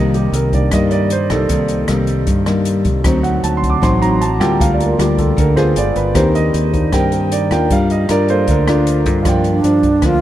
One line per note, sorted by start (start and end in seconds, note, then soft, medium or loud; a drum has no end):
0.00 0.30 C2 loud
0.00 0.70 C3 medium
0.00 0.52 D#3 soft
0.00 0.69 G3 medium
0.00 0.52 A#3 soft
0.00 0.69 A#3 medium
0.00 0.69 D#4 medium
0.00 0.14 D#5 medium
0.14 0.33 G4 medium
0.14 closed hi-hat soft
0.32 0.69 C2 loud
0.32 0.53 A#4 medium
0.32 closed hi-hat soft
0.53 0.70 D#3 soft
0.53 0.71 A#3 soft
0.53 0.71 D4 soft
0.53 0.72 D5 medium
0.53 kick medium
0.53 closed hi-hat soft
0.71 1.32 G2 medium
0.71 1.48 G2 medium
0.71 1.11 G3 medium
0.71 1.11 A#3 medium
0.71 1.11 D#4 medium
0.71 0.92 D#5 medium
0.71 kick medium
0.71 cross-stick medium
0.71 closed hi-hat soft
0.91 1.10 D5 medium
0.91 closed hi-hat soft
1.10 1.30 C5 medium
1.10 closed hi-hat soft
1.30 1.48 C2 medium
1.30 1.85 G3 medium
1.30 1.86 A#3 medium
1.30 1.86 D#4 medium
1.30 1.85 A4 medium
1.30 cross-stick medium
1.30 closed hi-hat soft
1.49 1.86 C2 medium
1.49 2.25 C3 medium
1.49 2.04 D#3 soft
1.49 2.05 A#3 soft
1.49 kick medium
1.49 closed hi-hat soft
1.68 closed hi-hat soft
1.88 2.25 C2 loud
1.88 2.43 G3 medium
1.88 2.44 A#3 medium
1.88 2.44 D#4 medium
1.88 cross-stick medium
1.88 closed hi-hat soft
2.07 closed hi-hat soft
2.27 2.87 G2 medium
2.27 3.03 G2 medium
2.27 kick medium
2.27 closed hi-hat soft
2.46 3.02 G3 medium
2.46 3.02 A#3 medium
2.46 3.02 D#4 medium
2.46 cross-stick medium
2.46 closed hi-hat soft
2.65 closed hi-hat soft
2.85 3.03 C2 medium
2.85 kick medium
2.85 closed hi-hat soft
3.03 3.41 D2 loud
3.03 3.81 D3 medium
3.03 3.99 F#3 soft
3.03 3.80 F#3 medium
3.03 4.00 C4 soft
3.03 3.80 C4 medium
3.03 4.00 D#4 soft
3.03 3.80 D#4 medium
3.03 kick medium
3.03 cross-stick medium
3.03 closed hi-hat soft
3.23 3.43 F#5 medium
3.23 closed hi-hat soft
3.43 3.80 D2 medium
3.43 3.56 A5 medium
3.43 closed hi-hat soft
3.57 3.69 C6 medium
3.63 kick medium
3.63 closed hi-hat soft
3.70 3.82 D6 medium
3.82 4.41 A1 medium
3.82 4.58 A2 medium
3.82 4.21 F#3 medium
3.82 4.21 C4 medium
3.82 4.21 D#4 medium
3.82 4.02 C6 medium
3.82 kick medium
3.82 cross-stick medium
3.82 closed hi-hat soft
4.01 4.19 F#3 soft
4.01 4.19 C4 soft
4.01 4.19 D#4 soft
4.01 4.21 A#5 medium
4.01 closed hi-hat soft
4.21 4.40 A5 medium
4.21 closed hi-hat soft
4.40 4.59 D2 medium
4.40 4.95 G3 medium
4.40 4.96 A#3 medium
4.40 4.96 F4 medium
4.40 4.59 G5 medium
4.40 cross-stick medium
4.40 closed hi-hat soft
4.60 4.96 D2 loud
4.60 5.36 D3 medium
4.60 4.73 F5 medium
4.60 kick medium
4.60 closed hi-hat medium
4.74 4.86 D5 medium
4.79 5.05 A#3 soft
4.79 5.06 F4 soft
4.79 closed hi-hat soft
4.86 4.99 A#4 medium
4.98 5.35 D2 medium
4.98 5.37 G3 medium
4.98 5.37 A#3 medium
4.98 5.38 F4 medium
4.98 5.18 G4 medium
4.98 cross-stick medium
4.98 closed hi-hat soft
5.18 5.37 A4 medium
5.18 kick medium
5.18 closed hi-hat soft
5.37 5.74 D2 medium
5.37 5.74 D3 medium
5.37 5.57 A#4 medium
5.37 kick medium
5.37 closed hi-hat soft
5.56 6.12 B3 medium
5.56 6.12 F4 medium
5.56 6.12 G#4 medium
5.56 5.75 C5 medium
5.56 cross-stick medium
5.56 closed hi-hat soft
5.76 5.95 G1 loud
5.76 6.13 G#3 soft
5.76 6.13 B3 soft
5.76 6.14 F4 medium
5.76 5.96 D5 medium
5.76 closed hi-hat soft
5.96 6.14 G1 medium
5.96 6.15 B4 medium
5.96 closed hi-hat soft
6.14 6.51 D#2 loud
6.14 6.90 D#3 medium
6.14 6.71 A#3 soft
6.14 6.89 C4 medium
6.14 6.72 D4 soft
6.14 6.72 D#4 medium
6.14 6.90 G4 medium
6.14 6.90 A#4 medium
6.14 6.34 C5 medium
6.14 kick medium
6.14 cross-stick medium
6.14 closed hi-hat soft
6.35 6.47 D#5 medium
6.35 closed hi-hat soft
6.54 6.90 D#2 loud
6.54 closed hi-hat soft
6.73 6.91 A#3 soft
6.73 6.91 D4 soft
6.73 6.91 D#4 soft
6.73 kick soft
6.73 closed hi-hat soft
6.93 7.53 G2 loud
6.93 7.68 D#3 medium
6.93 7.48 C4 medium
6.93 7.48 G4 medium
6.93 7.48 A#4 medium
6.93 7.12 G5 medium
6.93 kick medium
6.93 cross-stick medium
6.93 closed hi-hat soft
7.12 7.31 A#4 medium
7.12 closed hi-hat soft
7.32 7.51 D5 medium
7.32 closed hi-hat soft
7.51 7.69 D#2 medium
7.51 8.06 D4 medium
7.51 8.06 F4 medium
7.51 8.06 A#4 medium
7.51 7.70 G5 medium
7.51 cross-stick medium
7.51 closed hi-hat soft
7.70 8.06 G2 loud
7.70 8.46 G3 medium
7.70 7.90 F5 medium
7.70 kick medium
7.70 closed hi-hat soft
7.90 8.09 D#5 medium
7.90 closed hi-hat soft
8.09 8.45 G2 loud
8.09 8.64 D4 medium
8.09 8.65 F4 medium
8.09 8.65 A#4 medium
8.09 8.29 D5 medium
8.09 cross-stick medium
8.09 closed hi-hat soft
8.28 9.22 A#3 soft
8.28 9.21 F4 medium
8.28 8.44 A4 soft
8.28 8.48 C5 medium
8.28 closed hi-hat soft
8.46 9.06 D2 medium
8.46 9.24 D3 medium
8.46 8.48 A4 medium
8.46 kick medium
8.46 closed hi-hat soft
8.51 8.68 A#4 medium
8.68 9.22 D4 medium
8.68 8.80 D4 medium
8.68 9.23 F4 medium
8.68 9.23 A#4 medium
8.68 cross-stick medium
8.68 closed hi-hat soft
8.87 closed hi-hat soft
9.06 9.24 G2 medium
9.06 kick medium
9.06 closed hi-hat soft
9.23 9.61 G2 loud
9.23 10.01 G2 medium
9.23 9.61 F3 soft
9.23 9.61 A#3 medium
9.23 9.61 D4 medium
9.23 10.21 F4 medium
9.23 10.21 A#4 medium
9.23 kick medium
9.23 cross-stick medium
9.23 closed hi-hat soft
9.27 10.21 D5 medium
9.27 10.21 G5 medium
9.44 10.07 D4 medium
9.44 closed hi-hat soft
9.64 10.00 G2 loud
9.64 9.89 F3 medium
9.64 9.89 A#3 medium
9.64 9.89 D4 medium
9.64 closed hi-hat soft
9.83 kick medium
9.83 closed hi-hat soft
10.02 10.21 D2 loud
10.02 10.21 D3 medium
10.02 10.19 F3 medium
10.02 10.19 A#3 medium
10.02 10.19 D4 medium
10.02 10.21 F4 loud
10.02 kick medium
10.02 cross-stick medium
10.02 closed hi-hat soft